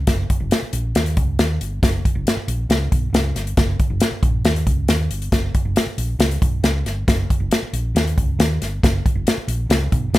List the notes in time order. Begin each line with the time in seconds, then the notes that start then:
0.07 F#1, kick, snare, closed hi-hat
0.30 kick, closed hi-hat
0.40 F#1
0.51 snare, closed hi-hat
0.62 muted fingered electric bass stroke
0.73 A#1, closed hi-hat
0.95 D#2, snare, closed hi-hat
1.06 closed hi-hat
1.17 C#2, kick, closed hi-hat
1.39 D#2, snare, closed hi-hat
1.61 G1, closed hi-hat
1.83 F#1, kick, snare, closed hi-hat
2.05 kick, closed hi-hat
2.15 F#1
2.27 snare, closed hi-hat
2.37 muted fingered electric bass stroke
2.48 A#1, closed hi-hat
2.69 C#2, snare, closed hi-hat
2.92 B1, kick, closed hi-hat
3.13 C#2, snare, closed hi-hat
3.35 G1, snare, closed hi-hat
3.47 closed hi-hat
3.57 F#1, kick, snare, closed hi-hat
3.80 kick, closed hi-hat
3.90 F#1
4.00 snare, closed hi-hat
4.12 muted fingered electric bass stroke
4.23 A#1, kick, closed hi-hat
4.45 D#2, snare, closed hi-hat
4.56 closed hi-hat
4.66 C#2, kick, closed hi-hat
4.88 D#2, snare, closed hi-hat
5.10 G1, closed hi-hat
5.22 closed hi-hat
5.32 F#1, kick, snare, closed hi-hat
5.55 kick, closed hi-hat
5.65 F#1
5.76 snare, closed hi-hat
5.87 muted fingered electric bass stroke
5.98 A#1, closed hi-hat
6.19 C#2, snare, closed hi-hat
6.31 closed hi-hat
6.42 B1, kick, closed hi-hat
6.63 C#2, snare, closed hi-hat
6.85 G1, snare, closed hi-hat
7.08 F#1, kick, snare, closed hi-hat
7.30 kick, closed hi-hat
7.40 F#1
7.51 snare, closed hi-hat
7.62 muted fingered electric bass stroke
7.73 A#1, closed hi-hat
7.95 D#2, snare, closed hi-hat
8.07 closed hi-hat
8.18 C#2, kick, closed hi-hat
8.39 D#2, snare, closed hi-hat
8.61 G1, snare, closed hi-hat
8.83 F#1, kick, snare, closed hi-hat
9.06 kick, closed hi-hat
9.15 F#1
9.27 snare, closed hi-hat
9.37 muted fingered electric bass stroke
9.48 A#1, closed hi-hat
9.70 C#2, snare, closed hi-hat
9.92 B1, kick, closed hi-hat
10.13 C#2, snare, closed hi-hat